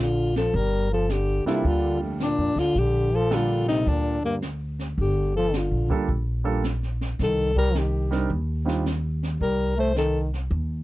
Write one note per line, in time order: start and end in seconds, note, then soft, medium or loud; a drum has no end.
0.00 0.50 A#1 medium
0.00 0.36 D3 medium
0.00 0.36 F4 medium
0.36 0.58 F3 medium
0.36 0.57 A4 medium
0.36 snare medium
0.54 1.42 G1 medium
0.54 0.91 G3 medium
0.54 0.92 A#4 medium
0.54 brush sweep soft
0.54 kick soft
0.92 1.12 F3 medium
0.92 1.13 A4 medium
1.09 1.45 D3 medium
1.09 1.46 G4 medium
1.09 snare medium
1.09 hi-hat pedal medium
1.45 1.68 C3 medium
1.45 2.16 G3 medium
1.45 2.17 A#3 medium
1.45 2.17 D4 medium
1.45 1.69 E4 medium
1.45 2.17 F4 medium
1.45 2.17 A4 medium
1.45 muted upright bass stroke soft
1.45 snare soft
1.64 2.34 D2 medium
1.64 2.01 D3 medium
1.64 2.02 F4 medium
1.64 brush sweep soft
1.64 kick soft
2.02 2.18 F2 soft
2.02 2.19 A3 soft
2.20 2.57 A#2 medium
2.20 2.60 D4 medium
2.20 snare medium
2.20 hi-hat pedal soft
2.38 2.55 F2 medium
2.56 2.74 D2 medium
2.56 2.77 D3 medium
2.56 2.80 F4 medium
2.56 snare soft
2.75 3.82 A#1 medium
2.75 3.15 D3 medium
2.75 3.17 G4 medium
2.75 brush sweep soft
2.75 kick soft
3.13 3.33 F3 medium
3.13 3.36 A4 medium
3.30 3.67 D3 medium
3.30 4.16 G3 medium
3.30 4.16 A#3 medium
3.30 4.16 D4 medium
3.30 4.16 F4 medium
3.30 3.68 F4 medium
3.30 4.16 A4 medium
3.30 snare medium
3.30 hi-hat pedal medium
3.67 3.88 C3 medium
3.67 3.90 D#4 medium
3.67 snare soft
3.87 4.93 D2 medium
3.87 4.22 A#2 medium
3.87 4.24 D4 medium
3.87 brush sweep soft
3.87 kick soft
4.23 4.40 G2 medium
4.23 4.36 A#3 medium
4.42 snare medium
4.42 hi-hat pedal medium
4.79 snare soft
4.98 5.67 G1 medium
4.98 5.33 D3 medium
4.98 5.34 G4 medium
4.98 brush sweep soft
4.98 kick soft
5.35 5.55 F3 medium
5.35 5.58 A4 medium
5.53 5.90 D3 medium
5.53 5.92 F4 medium
5.53 snare medium
5.53 hi-hat pedal medium
5.71 5.88 A#1 medium
5.88 6.06 D2 medium
5.88 6.06 G3 medium
5.88 6.06 A#3 medium
5.88 6.07 D4 medium
5.88 6.07 F4 medium
5.88 6.07 A4 medium
5.88 kick medium
6.09 7.15 A#1 medium
6.09 brush sweep soft
6.09 kick soft
6.44 6.61 G3 medium
6.44 6.61 A#3 medium
6.44 6.62 D4 medium
6.44 6.62 F4 medium
6.44 6.62 A4 medium
6.64 snare medium
6.64 hi-hat pedal medium
6.83 snare soft
7.01 snare soft
7.19 8.26 C2 medium
7.19 7.54 D#3 medium
7.19 7.55 A4 medium
7.19 brush sweep soft
7.19 kick soft
7.19 snare soft
7.55 7.77 G3 medium
7.55 7.79 A#4 medium
7.55 kick medium
7.75 8.12 D#3 medium
7.75 8.13 G4 medium
7.75 snare medium
7.75 hi-hat pedal medium
8.11 8.27 G3 medium
8.11 8.28 C4 medium
8.11 8.28 D4 medium
8.11 8.28 D#4 medium
8.11 8.28 A#4 medium
8.11 snare soft
8.30 9.36 D#2 medium
8.30 brush sweep soft
8.30 kick soft
8.65 8.83 G3 medium
8.65 8.82 C4 medium
8.65 8.83 D4 medium
8.65 8.83 D#4 medium
8.65 8.83 F4 medium
8.65 snare soft
8.86 snare medium
8.86 hi-hat pedal soft
9.23 snare soft
9.41 10.47 C2 medium
9.41 9.75 G3 medium
9.41 9.76 A#4 medium
9.41 brush sweep soft
9.41 kick soft
9.77 9.94 A3 medium
9.77 9.96 C5 medium
9.96 10.30 D#3 medium
9.96 10.19 A4 medium
9.96 snare medium
9.96 hi-hat pedal medium
10.34 snare soft
10.51 10.83 D#2 medium
10.51 brush sweep soft
10.51 kick soft